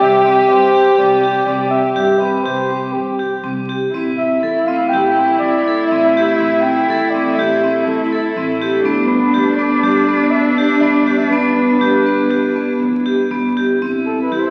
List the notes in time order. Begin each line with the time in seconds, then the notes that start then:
Already playing: G4
0.00 C2 G4 E5
0.26 C4
0.49 G2 C5
0.75 G4
0.98 C2 C4 D5
1.23 G4
1.46 C2 C4 D5
1.70 E5
1.95 G2 G4
2.19 C4 B4
2.42 C2 G4 C5
2.70 C4
2.93 G2 G4
3.19 G4
3.43 C2 C4
3.69 G4
3.92 A3 C4 E4 G4
4.18 E5
4.43 E2 A4
4.65 C4 F5
4.89 A1 G5
4.94 G4
5.18 C4
5.39 E2 D5
5.67 A4
5.87 A1 E5
5.92 C4
6.17 G4
6.36 A4 E5
6.40 A1 C4
6.61 G5
6.89 E2 A4
7.10 D5
7.15 C4
7.34 A1 E5
7.39 G4
7.63 C4
7.83 E2 A4
8.12 A4
8.36 A1 C4
8.62 G4
8.83 G1 G3 B3 D4 B4
9.07 B4
9.34 D2 G4
9.56 B3 D5
9.83 G1 G4
10.08 B3
10.31 D2 E5
10.58 G4
10.81 G1 B3 D5
11.07 G4
11.16 E5
11.29 G1 B3 E4 B4
11.81 D2 G4
12.06 B3
12.29 G1 G4
12.56 B3
12.79 D2
13.06 G4
13.30 G1 B3
13.57 G4
13.80 A1 C4 E4
14.06 A4
14.22 B4
14.31 E2 G4
14.39 C5